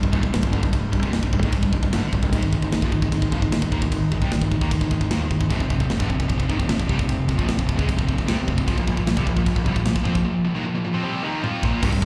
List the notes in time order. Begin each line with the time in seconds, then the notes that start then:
Already playing: C3 G3 D4 D#4
0.03 C1 C2 G2, kick
0.12 D#1 D#2 A#2, kick
0.23 C1 C2 G2, kick
0.33 C1 C2 G2, snare, crash
0.43 C1 C2 G2, kick
0.52 G1 G2 D3, kick
0.62 C1 C2 G2, kick
0.73 C1 C2 G2, kick, crash
0.92 C1 C2 G2, kick
1.02 F1 F2 C3, kick
1.13 C1 C2 G2, snare, crash
1.23 C1 C2 G2, kick
1.33 C1 C2 G2, kick
1.43 G#1 G#2 D#3, kick
1.52 C1 C2 G2, kick, crash
1.62 C1 C2 G2, kick
1.73 C1 C2 G2, kick
1.83 C1 C2 G2, kick
1.92 G1 G2 D3, snare, crash
2.03 muted fingered electric bass stroke, muted distorted electric guitar stroke
2.13 C1 C2 G2, kick
2.22 C1 C2 G2, kick
2.31 G#1 G#2 D#3 G#3 G#4, kick, crash
2.43 G#1 G#2 D#3, kick
2.53 G#1 G#2 D#3, kick
2.62 G#1 G#2 D#3, kick
2.72 G#1 G#2 D#3, snare, crash
2.82 A#1 A#2 F3, kick
2.92 G#1 G#2 D#3, kick
3.02 G#1 G#2 D#3, kick
3.11 G#1 G#2 D#3, kick, crash
3.22 G#1 G#2 D#3, kick
3.32 A#1 A#2 F3, kick
3.42 G#1 G#2 D#3, kick
3.52 G#1 G#2 D#3, snare, crash
3.62 G#1 G#2 D#3, kick
3.72 D#2 D#3 A#3, kick
3.82 G#1 G#2 D#3, kick
3.92 G#1 G#2 D#3, kick, crash
4.12 G#1 G#2 D#3, kick
4.22 C2 C3 G3, kick
4.32 G#1 G#2 D#3, snare, crash
4.42 G#1 G#2 D#3, kick
4.51 G#1 G#2 D#3, kick
4.61 D#2 D#3 A#3, kick
4.71 G#1 G#2 D#3, kick, crash
4.81 G#1 G#2 D#3, kick
4.91 G#1 G#2 D#3, kick
5.01 G#1 G#2 D#3, kick
5.11 D#2 D#3 A#3, snare, crash
5.22 muted fingered electric bass stroke, muted distorted electric guitar stroke
5.31 G#1 G#2 D#3, kick
5.40 G#1 G#2 D#3, kick
5.50 F1 F2 C3 F3 C4 G4 F5, kick, crash
5.60 F1 F2 C3, kick
5.70 F1 F2 C3, kick
5.80 F1 F2 C3, kick
5.90 F1 F2 C3, snare, crash
5.99 G1 G2 D3, kick
6.09 F1 F2 C3, kick
6.19 F1 F2 C3, kick
6.28 F1 F2 C3, kick, crash
6.38 F1 F2 C3, kick
6.48 G#1 G#2 D#3, kick
6.58 F1 F2 C3, kick
6.69 F1 F2 C3, snare, crash
6.79 F1 F2 C3, kick
6.88 C2 C3 G3, kick
6.98 F1 F2 C3, kick
7.09 F1 F2 C3, kick, crash
7.28 F1 F2 C3, kick
7.37 A#1 A#2 F3, kick
7.47 F1 F2 C3, snare, crash
7.57 F1 F2 C3, kick
7.66 F1 F2 C3, kick
7.76 C#2 C#3 G#3, kick
7.87 F1 F2 C3, kick, crash
7.96 F1 F2 C3, kick
8.07 F1 F2 C3, kick
8.17 F1 F2 C3, kick
8.27 C2 C3 G3, snare, crash
8.37 muted distorted electric guitar stroke, muted fingered electric bass stroke
8.47 F1 F2 C3, kick
8.57 F1 F2 C3, kick
8.67 A#1 A#2 F3 A#3 F4 A#4, kick, crash
8.77 A#1 A#2 F3, kick
8.87 A#1 A#2 F3, kick
8.96 A#1 A#2 F3, kick
9.06 A#1 A#2 F3, snare, crash
9.16 C2 C3 G3, kick
9.26 A#1 A#2 F3, kick
9.36 A#1 A#2 F3, kick
9.45 A#1 A#2 F3, kick, crash
9.56 A#1 A#2 F3, kick
9.64 C2 C3 G3, kick
9.75 A#1 A#2 F3, kick
9.85 A#1 A#2 F3, snare, crash
9.95 A#1 A#2 F3, kick
10.04 F2 F3 C4, kick
10.13 A#1 A#2 F3, kick
10.24 A#2 F3
10.45 A#2 F3
10.55 D#3 A#3
10.65 A#2 F3
10.75 A#2 F3
10.85 A#2 F3
10.94 F3 C4
11.03 C3 G3 C4
11.23 D#3 A#3 D#4
11.42 F3 C4 F4, high tom
11.63 A#2 F3 A#3, kick
11.81 C1 C2 G2 C3 G3 D4 D#4, kick, crash
11.92 C1 C2 G2, kick
12.02 C2